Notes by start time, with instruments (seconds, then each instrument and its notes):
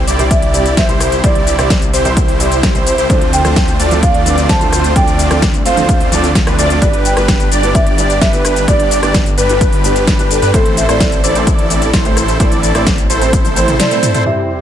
Already playing: felt piano C3 G3 C4 E4 C5
0.07 detuned saw bass C2, supersaw synth E4 G4 D5, analog synth lead D5, open hi-hat, shaker
0.19 felt piano C3 G3 C4 E4 C5, closed hi-hat, shaker
0.31 marimba E5, kick, closed hi-hat, shaker
0.42 closed hi-hat
0.53 felt piano C3 G3 C4 E4 D5, open hi-hat, shaker
0.66 closed hi-hat, shaker
0.77 detuned saw bass C2, supersaw synth E4 G4 C5, analog synth lead C5, marimba E5, kick, snare, closed hi-hat, shaker
0.88 felt piano C3 G3 C4 E4 C5, closed hi-hat, shaker
1.00 cross-stick, open hi-hat, shaker
1.12 closed hi-hat, shaker
1.23 detuned saw bass C2, felt piano C3 G3 C4 E4 C5, supersaw synth E4 G4 D5, marimba D5, analog synth lead D5, kick, closed hi-hat, shaker
1.35 closed hi-hat
1.47 open hi-hat, shaker
1.58 detuned saw bass C2, felt piano C3 G3 C4 E4 C5, supersaw synth E4 G4 D5, analog synth lead D5, cross-stick, closed hi-hat, shaker
1.70 kick, snare, closed hi-hat, shaker
1.82 closed hi-hat, shaker
1.93 detuned saw bass C2, supersaw synth E4 G4 C5, analog synth lead C5, marimba C5, open hi-hat, shaker
2.05 felt piano C3 G3 C4 E4 C5, closed hi-hat, shaker
2.17 kick, closed hi-hat, shaker
2.28 open hi-hat
2.39 felt piano C3 G3 C4 E4 D5, open hi-hat, shaker
2.52 closed hi-hat, shaker
2.63 kick, snare, closed hi-hat, shaker
2.74 felt piano C3 G3 C4 E4 C5, closed hi-hat, shaker
2.87 marimba C5, open hi-hat, shaker
2.98 detuned saw bass C2, supersaw synth E4 G4 C5, analog synth lead C5, closed hi-hat, shaker
3.09 detuned saw bass D2, felt piano F3 C4 D4 A4, supersaw synth A3 C4 D4 F4 C5, analog synth lead C5, marimba C5, kick, closed hi-hat, shaker
3.21 closed hi-hat
3.33 marimba G5, open hi-hat, shaker
3.44 detuned saw bass D2, felt piano F3 C4 D4 A4, supersaw synth A3 C4 D4 F4 C5, analog synth lead C5, cross-stick, closed hi-hat, shaker
3.56 kick, snare, closed hi-hat, shaker
3.68 closed hi-hat, shaker
3.79 detuned saw bass D2, supersaw synth A3 C4 D4 F4 D5, analog synth lead D5, open hi-hat, shaker
3.91 felt piano F3 C4 D4 A4, closed hi-hat, shaker
4.03 marimba F5, kick, closed hi-hat, shaker
4.14 closed hi-hat
4.25 felt piano F3 C4 D4 B4, open hi-hat, shaker
4.38 closed hi-hat, shaker
4.49 detuned saw bass D2, supersaw synth A3 C4 D4 F4 C5, analog synth lead C5, marimba A5, kick, snare, closed hi-hat, shaker
4.60 felt piano F3 C4 D4 A4, closed hi-hat, shaker
4.73 cross-stick, open hi-hat, shaker
4.84 closed hi-hat, shaker
4.95 detuned saw bass D2, felt piano F3 C4 D4 A4, supersaw synth A3 C4 D4 F4 D5, analog synth lead D5, marimba G5, kick, closed hi-hat, shaker
5.07 closed hi-hat, shaker
5.19 open hi-hat, shaker
5.30 detuned saw bass D2, felt piano F3 C4 D4 A4, supersaw synth A3 C4 D4 F4 D5, analog synth lead D5, cross-stick, closed hi-hat, shaker
5.42 kick, snare, closed hi-hat, shaker
5.54 closed hi-hat, shaker
5.66 detuned saw bass D2, supersaw synth A3 C4 D4 F4 C5, analog synth lead C5, marimba F5, open hi-hat, shaker
5.77 felt piano F3 C4 D4 A4, closed hi-hat, shaker
5.89 kick, closed hi-hat, shaker
6.00 open hi-hat
6.12 detuned saw bass D2, felt piano F3 C4 D4 A4, supersaw synth A3 C4 D4 F4 D5, analog synth lead D5, open hi-hat, shaker
6.24 closed hi-hat, shaker
6.35 kick, snare, closed hi-hat, shaker
6.46 detuned saw bass D2, felt piano F3 C4 D4 A4, supersaw synth A3 C4 D4 F4 B4, analog synth lead B4, cross-stick, closed hi-hat, shaker
6.59 detuned saw bass D2, supersaw synth A3 C4 D4 F4 D5, analog synth lead D5, marimba D5, open hi-hat, shaker
6.70 closed hi-hat, shaker
6.81 detuned saw bass G1, felt piano G2 G3 B3 D4 B4, supersaw synth D4 G4 B4, analog synth lead B4, marimba D5, kick, closed hi-hat, shaker
6.93 closed hi-hat
7.05 marimba G5, open hi-hat, shaker
7.16 detuned saw bass G1, felt piano G2 G3 B3 D4 B4, supersaw synth D4 G4 B4, analog synth lead B4, cross-stick, closed hi-hat, shaker
7.28 kick, snare, closed hi-hat, shaker
7.40 closed hi-hat, shaker
7.52 detuned saw bass G1, supersaw synth D4 G4 D5, analog synth lead D5, open hi-hat, shaker
7.63 felt piano G2 G3 B3 D4 B4, closed hi-hat, shaker
7.75 marimba E5, kick, closed hi-hat, shaker
7.87 closed hi-hat
7.98 felt piano G2 G3 B3 D4 D5, open hi-hat, shaker
8.10 closed hi-hat, shaker
8.21 detuned saw bass G1, supersaw synth D4 G4 B4, analog synth lead B4, marimba E5, kick, snare, closed hi-hat, shaker
8.32 felt piano G2 G3 B3 D4 B4, closed hi-hat, shaker
8.45 cross-stick, open hi-hat, shaker
8.56 closed hi-hat, shaker
8.67 detuned saw bass G1, felt piano G2 G3 B3 D4 B4, supersaw synth D4 G4 D5, marimba D5, analog synth lead D5, kick, closed hi-hat, shaker
8.80 closed hi-hat
8.91 open hi-hat, shaker
9.02 detuned saw bass G1, felt piano G2 G3 B3 D4 B4, supersaw synth D4 G4 D5, analog synth lead D5, cross-stick, closed hi-hat, shaker
9.14 kick, snare, closed hi-hat, shaker
9.26 closed hi-hat, shaker
9.38 detuned saw bass G1, supersaw synth D4 G4 B4, marimba B4, analog synth lead B4, open hi-hat, shaker
9.49 felt piano G2 G3 B3 D4 B4, closed hi-hat, shaker
9.61 kick, closed hi-hat, shaker
9.73 open hi-hat
9.84 felt piano G2 G3 B3 D4 D5, open hi-hat, shaker
9.96 closed hi-hat, shaker
10.07 kick, snare, closed hi-hat, shaker
10.19 felt piano G2 G3 B3 D4 B4, closed hi-hat, shaker
10.31 marimba A4, open hi-hat, shaker
10.42 detuned saw bass G2, supersaw synth D4 G4 B4, analog synth lead B4, closed hi-hat, shaker
10.53 detuned saw bass A1, felt piano A2 A3 C4 E4 C5, supersaw synth E4 A4 C5, marimba A4, analog synth lead C5, kick, closed hi-hat, shaker
10.66 closed hi-hat
10.77 marimba E5, open hi-hat, shaker
10.88 detuned saw bass A1, felt piano A2 A3 C4 E4 C5, supersaw synth E4 A4 C5, analog synth lead C5, marimba D5, cross-stick, closed hi-hat, shaker
11.00 kick, snare, closed hi-hat, shaker
11.12 closed hi-hat, shaker
11.24 detuned saw bass A1, supersaw synth E4 A4 D5, marimba C5, analog synth lead D5, open hi-hat, shaker
11.35 felt piano A2 A3 C4 E4 C5, closed hi-hat, shaker
11.47 kick, closed hi-hat, shaker
11.59 closed hi-hat
11.70 felt piano A2 A3 C4 E4 D5, open hi-hat, shaker
11.82 closed hi-hat, shaker
11.93 detuned saw bass A1, supersaw synth E4 A4 C5, analog synth lead C5, kick, snare, closed hi-hat, shaker
12.04 felt piano A2 A3 C4 E4 C5, closed hi-hat, shaker
12.17 cross-stick, open hi-hat, shaker
12.28 closed hi-hat, shaker
12.39 detuned saw bass A1, felt piano A2 A3 C4 E4 C5, supersaw synth E4 A4 D5, analog synth lead D5, kick, closed hi-hat, shaker
12.52 closed hi-hat, shaker
12.63 open hi-hat, shaker
12.74 detuned saw bass A1, felt piano A2 A3 C4 E4 C5, supersaw synth E4 A4 D5, analog synth lead D5, cross-stick, closed hi-hat, shaker
12.87 kick, snare, closed hi-hat, shaker
12.98 closed hi-hat, shaker
13.10 detuned saw bass A1, supersaw synth E4 A4 C5, analog synth lead C5, open hi-hat, shaker
13.21 felt piano A2 A3 C4 E4 C5, closed hi-hat, shaker
13.33 kick, closed hi-hat, high tom, shaker
13.45 open hi-hat, high tom, shaker
13.56 felt piano A2 A3 C4 E4 C5, marimba C5, open hi-hat, shaker
13.68 closed hi-hat, mid tom, shaker
13.80 marimba D5, snare, closed hi-hat, mid tom, shaker
13.91 felt piano A2 A3 C4 E4 C5, closed hi-hat, shaker
14.03 mid tom, open hi-hat, shaker
14.14 supersaw synth E4 A4 C5, analog synth lead C5, closed hi-hat, mid tom, shaker
14.26 felt piano C3 G3 C4 E4 C5, supersaw synth E4 G4 C5, marimba E5, sub drop